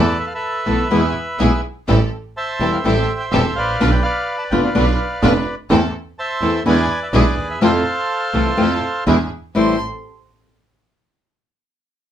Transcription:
Already playing: double bass E2, string section B3 E4 A4, bandoneon A4 B4 D5
0.20 bandoneon E5
0.27 bandoneon F5
0.34 bandoneon A4 B4 E5
0.66 double bass B1, nylon-string guitar E3 A3 B3 E4, string section B3 E4 A4
0.91 double bass E2, nylon-string guitar B2 E3 G#3 B3 E4, string section B3 E4 G#4
1.39 double bass B1, nylon-string guitar B2 E3 G#3 B3 E4, string section B3 E4 G#4
1.88 double bass A1, nylon-string guitar E3 G3 C4 E4, string section C4 G4 A4
2.37 bandoneon C5 E5 A5
2.60 double bass E1, nylon-string guitar E3 G3 C4 E4, string section C4 G4 A4
2.73 bandoneon F5
2.84 double bass A1, nylon-string guitar E3 G3 C4 E4, string section C4 G4 A4, bandoneon C5 E5 G5
3.20 bandoneon G5
3.31 double bass E1, nylon-string guitar E3 G3 C4 E4, string section C4 G4 A4, bandoneon E5
3.56 double bass A1, bandoneon B4 D5 F5
3.80 double bass B1, nylon-string guitar B2 D3 B3 D4 F4, string section D4 F4 B4
3.91 bandoneon G5
4.03 bandoneon B4 D5 F5
4.38 bandoneon A5
4.51 double bass F1, nylon-string guitar B2 D3 B3 D4 F4, string section D4 F4 B4, bandoneon G5
4.63 bandoneon B4 D5 F5
4.75 double bass B1, nylon-string guitar B2 D3 B3 D4 F4, string section D4 F4 B4
5.22 double bass F1, nylon-string guitar B2 D3 B3 D4 F4, string section D4 F4 B4
5.70 double bass E2, nylon-string guitar E3 A3 C4 E4, string section C4 E4 A4
6.19 bandoneon C5 E5 A5
6.41 double bass E2, nylon-string guitar E3 A3 C4 E4, string section C4 E4 A4
6.55 bandoneon A5
6.65 double bass E2, nylon-string guitar B2 D3 G#3 B3 E4, string section D4 E4 G#4, bandoneon B4 D5 G#5
7.03 bandoneon E5
7.13 double bass B1, nylon-string guitar B2 D3 G#3 B3 E4, string section D4 E4 G#4, bandoneon G#4 B4 D5
7.37 double bass D#2
7.50 bandoneon E5
7.61 double bass F2, nylon-string guitar C3 E3 A3 C4 F4, string section E4 F4 A4, bandoneon A4 C5 F5
8.33 double bass C2, nylon-string guitar C3 E3 A3 C4 F4, string section E4 F4 A4
8.57 double bass F2, nylon-string guitar C3 E3 A3 C4 F4, string section E4 F4 A4
9.06 double bass E2, nylon-string guitar B2 D3 G#3 B3 E4, string section D4 E4 G#4
9.55 double bass A1, nylon-string guitar A2 E3 G3 C4 E4, string section C4 G4 A4, bandoneon C5, violin C6

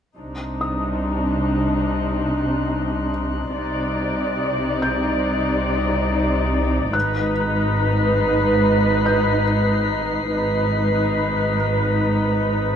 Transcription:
0.17 double bass section C2, cello section C3, viola section D4 D#4, violin section C6
0.61 felt piano D#6
1.03 violin section F#6
3.56 double bass section C2, cello section C3, viola section D#4 D5
4.82 felt piano G6
6.93 double bass section G#1, cello section G#2, viola section D#4 B4, felt piano F#6, violin section B6
7.78 violin section C7
9.06 felt piano G6
10.32 double bass section G#1, cello section G#2, viola section D#4 B4
11.88 violin section B6

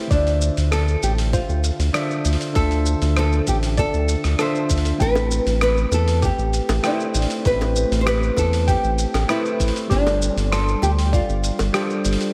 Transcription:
Already playing: tine electric piano A3 E4 G4 B4 C5
0.07 analog synth bass D2, tine electric piano D3 D4 F4, synth pluck D5, kick, open hi-hat, shaker
0.12 nylon-string guitar D4, tine electric piano C5 E5
0.27 open hi-hat, shaker
0.42 shaker
0.57 analog synth bass D2, open hi-hat, shaker
0.71 synth pluck A4, nylon-string guitar A4, cross-stick, open hi-hat, shaker
0.88 shaker
1.03 analog synth bass A1, nylon-string guitar G4, open hi-hat, shaker
1.18 open hi-hat, shaker
1.33 nylon-string guitar F4, synth pluck C5, kick, open hi-hat, shaker
1.49 analog synth bass D2, shaker
1.64 open hi-hat, shaker
1.79 analog synth bass D2, open hi-hat, shaker
1.93 tine electric piano D3 D4 F4 C5 E5, synth pluck D5, cross-stick, open hi-hat, shaker
2.11 shaker
2.25 analog synth bass D2, open hi-hat, shaker
2.33 open hi-hat
2.41 open hi-hat, shaker
2.52 analog synth bass D2, tine electric piano D3 D4 F4, synth pluck A4, nylon-string guitar A4, kick, open hi-hat, shaker
2.57 tine electric piano C5 E5
2.71 open hi-hat, shaker
2.86 shaker
3.02 analog synth bass D2, open hi-hat, shaker
3.16 nylon-string guitar A4, synth pluck C5, cross-stick, open hi-hat, shaker
3.32 shaker
3.47 analog synth bass A1, nylon-string guitar G4, kick, open hi-hat, shaker
3.63 open hi-hat, shaker
3.77 nylon-string guitar A4, synth pluck D5, kick, open hi-hat, shaker
3.94 analog synth bass D2, shaker
4.08 open hi-hat, shaker
4.24 analog synth bass D2, cross-stick, open hi-hat, shaker
4.38 tine electric piano D3 D4 F4 C5 E5, synth pluck A4, nylon-string guitar C5, cross-stick, open hi-hat, shaker
4.55 shaker
4.70 analog synth bass D2, kick, open hi-hat, shaker
4.78 open hi-hat
4.85 open hi-hat, shaker
4.98 analog synth bass A1, tine electric piano A3 E4 G4, nylon-string guitar B4, synth pluck G5, kick, open hi-hat, shaker
5.02 tine electric piano C4 B4
5.16 open hi-hat, high bongo, shaker
5.31 shaker
5.46 analog synth bass A1, nylon-string guitar A4, open hi-hat, shaker
5.61 synth pluck B4, nylon-string guitar B4, cross-stick, open hi-hat, shaker
5.77 shaker
5.91 analog synth bass E2, nylon-string guitar A4, open hi-hat, high bongo, shaker
6.08 open hi-hat, shaker
6.22 synth pluck G4, nylon-string guitar G4, kick, open hi-hat, shaker
6.38 analog synth bass A1, shaker
6.53 open hi-hat, shaker
6.69 analog synth bass A1, open hi-hat, high bongo, shaker
6.83 tine electric piano A3 E4 G4 B4 C5, nylon-string guitar E4, synth pluck G5, cross-stick, open hi-hat, shaker
7.00 shaker
7.14 analog synth bass A1, open hi-hat, shaker
7.22 open hi-hat
7.30 open hi-hat, shaker
7.42 analog synth bass A1, tine electric piano A3 E4 G4, synth pluck B4, kick, open hi-hat, shaker
7.47 tine electric piano C4 B4, nylon-string guitar B4
7.61 open hi-hat, high bongo, shaker
7.76 shaker
7.91 analog synth bass A1, open hi-hat, shaker
8.01 nylon-string guitar C5
8.06 synth pluck G4, nylon-string guitar B4, cross-stick, open hi-hat, shaker
8.23 shaker
8.37 analog synth bass E2, nylon-string guitar A4, kick, open hi-hat, high bongo, shaker
8.53 open hi-hat, shaker
8.68 nylon-string guitar G4, synth pluck G5, kick, open hi-hat, shaker
8.84 analog synth bass A1, shaker
8.98 open hi-hat, shaker
9.14 analog synth bass A1, cross-stick, open hi-hat, high bongo, shaker
9.28 tine electric piano A3 E4 G4 B4 C5, nylon-string guitar E4, synth pluck B4, cross-stick, open hi-hat, shaker
9.46 shaker
9.60 analog synth bass A1, kick, open hi-hat, shaker
9.68 open hi-hat
9.76 open hi-hat, shaker
9.88 analog synth bass G1, tine electric piano G3 D4 F4, synth pluck G4, kick, open hi-hat, shaker
9.92 nylon-string guitar D4, tine electric piano A4 C5
10.06 open hi-hat, high bongo, shaker
10.22 shaker
10.35 analog synth bass G1, nylon-string guitar C4, open hi-hat, shaker
10.52 nylon-string guitar A4, synth pluck C6, cross-stick, open hi-hat, shaker
10.68 shaker
10.82 analog synth bass D2, nylon-string guitar G4, open hi-hat, high bongo, shaker
10.99 open hi-hat, shaker
11.06 nylon-string guitar G4
11.13 nylon-string guitar F4, synth pluck D5, kick, open hi-hat, shaker
11.29 analog synth bass G1, shaker
11.44 open hi-hat, shaker
11.59 analog synth bass G1, open hi-hat, high bongo, shaker
11.73 tine electric piano G3 D4 F4 A4 C5, synth pluck G4, cross-stick, open hi-hat, shaker
11.90 shaker
12.05 analog synth bass G1, open hi-hat, shaker
12.13 open hi-hat
12.21 open hi-hat, shaker

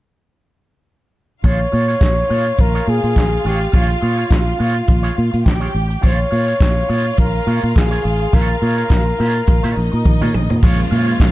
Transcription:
1.44 fingered electric bass A#1, clean electric guitar F4 G#4 C#5, string section F4 F5, flugelhorn C#5, kick, closed hi-hat
1.60 muted clean electric guitar stroke
1.72 fingered electric bass A#2, clean electric guitar F4 G#4 C#5
1.88 clean electric guitar F4 G#4 C#5, closed hi-hat
2.01 fingered electric bass A#1, kick, snare, clap, closed hi-hat
2.17 muted clean electric guitar stroke
2.29 fingered electric bass A#2, clean electric guitar F4 G#4 C#5
2.46 muted clean electric guitar stroke, closed hi-hat
2.57 fingered electric bass A#1, flugelhorn A#4, muted clean electric guitar stroke, kick, closed hi-hat
2.74 clean electric guitar F4 G#4 C#5
2.87 fingered electric bass A#2, flugelhorn G#4
3.03 fingered electric bass A#2, muted clean electric guitar stroke, closed hi-hat
3.16 fingered electric bass A#1, kick, snare, clap, closed hi-hat
3.32 muted clean electric guitar stroke
3.44 fingered electric bass A1, clean electric guitar F4 G#4 C#5, flugelhorn G4
3.60 muted clean electric guitar stroke, closed hi-hat
3.72 fingered electric bass A#1, clean electric guitar F4 G#4 C#5, kick, closed hi-hat
3.76 flugelhorn F4
3.88 muted clean electric guitar stroke
4.01 fingered electric bass A#2, clean electric guitar F4 G#4 C#5
4.17 clean electric guitar F4 G#4 C#5, closed hi-hat
4.31 fingered electric bass A#1, kick, snare, clap, closed hi-hat
4.47 muted clean electric guitar stroke
4.59 fingered electric bass A#2, clean electric guitar F4 G#4 C#5
4.75 muted clean electric guitar stroke, closed hi-hat
4.87 fingered electric bass A#1, muted clean electric guitar stroke, kick, closed hi-hat
5.03 clean electric guitar F4 G#4 C#5
5.16 fingered electric bass A#2, muted clean electric guitar stroke
5.31 fingered electric bass A#2, muted clean electric guitar stroke, closed hi-hat
5.44 fingered electric bass A#1, string section G4 G5, muted clean electric guitar stroke, kick, snare, closed hi-hat
5.49 clap
5.60 clean electric guitar F4 G#4 C#5
5.73 fingered electric bass A1, muted clean electric guitar stroke
5.89 muted clean electric guitar stroke, closed hi-hat
6.01 fingered electric bass A#1, clean electric guitar F4 G#4 C#5, string section F4 F5, kick, closed hi-hat
6.05 flugelhorn C#5
6.18 muted clean electric guitar stroke
6.30 fingered electric bass A#2, clean electric guitar F4 G#4 C#5, open hi-hat
6.47 clean electric guitar F4 G#4 C#5, closed hi-hat
6.60 fingered electric bass A#1, kick, snare, clap, closed hi-hat
6.76 muted clean electric guitar stroke
6.88 fingered electric bass A#2, clean electric guitar F4 G#4 C#5, open hi-hat
7.05 muted clean electric guitar stroke, closed hi-hat
7.17 fingered electric bass A#1, flugelhorn A#4, muted clean electric guitar stroke, kick, closed hi-hat
7.34 muted clean electric guitar stroke
7.46 fingered electric bass A#2, clean electric guitar F4 G#4 C#5, open hi-hat
7.63 fingered electric bass A#2, muted clean electric guitar stroke, closed hi-hat
7.75 fingered electric bass A#1, flugelhorn G#4, muted clean electric guitar stroke, kick, snare, clap, closed hi-hat
7.91 clean electric guitar F4 G#4 C#5
8.04 fingered electric bass A1, muted clean electric guitar stroke, open hi-hat
8.20 muted clean electric guitar stroke, closed hi-hat
8.33 fingered electric bass A#1, clean electric guitar F4 G#4 C#5, flugelhorn A#4, kick, closed hi-hat
8.49 muted clean electric guitar stroke
8.62 fingered electric bass A#2, clean electric guitar F4 G#4 C#5, open hi-hat
8.77 clean electric guitar F4 G#4 C#5, closed hi-hat
8.90 fingered electric bass A#1, kick, snare, clap, closed hi-hat
9.06 muted clean electric guitar stroke
9.19 fingered electric bass A#2, clean electric guitar F4 G#4 C#5, open hi-hat
9.35 muted clean electric guitar stroke, closed hi-hat
9.47 fingered electric bass A#1, muted clean electric guitar stroke, kick, closed hi-hat
9.63 fingered electric bass A#2, clean electric guitar F4 G#4 C#5
9.76 fingered electric bass A#1, string section D#4 D#5, muted clean electric guitar stroke, open hi-hat
9.92 fingered electric bass A#2, muted clean electric guitar stroke, closed hi-hat
10.05 fingered electric bass A#1, muted clean electric guitar stroke, kick, high tom
10.21 fingered electric bass A#2, clean electric guitar F4 G#4 C#5, mid tom
10.34 fingered electric bass A#1, muted clean electric guitar stroke, mid tom
10.50 fingered electric bass A#2, muted clean electric guitar stroke, floor tom
10.62 fingered electric bass A#1, string section C#3 F3 G#3 A#3 F4 F5, clean electric guitar F4 G#4 C#5, kick, crash
10.91 fingered electric bass A#2, clean electric guitar F4 G#4 C#5, open hi-hat
11.07 clean electric guitar F4 G#4 C#5, closed hi-hat
11.20 fingered electric bass A#1, muted clean electric guitar stroke, kick, snare, clap, closed hi-hat

